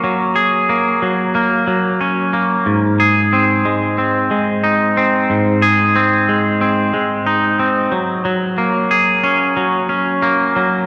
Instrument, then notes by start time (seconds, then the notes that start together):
clean electric guitar
Already playing: A#3 C#4
0.04 F#3
0.36 G#4
0.69 A#3
1.02 F#3
1.35 A#3
1.67 F#3
2.01 C#4
2.33 A#3
2.66 G#2
3.00 G#4
3.33 C4
3.65 G#3
3.98 C4
4.31 G#3
4.64 D#4
4.97 C4
5.30 G#2
5.62 G#4
5.96 C4
6.29 G#3
6.61 C4
6.94 G#3
7.26 D#4
7.59 C4
7.92 F#3
8.25 F#3
8.58 A#3
8.91 G#4
9.24 C#4
9.57 F#3
9.89 C#4
10.22 A#3
10.56 F#3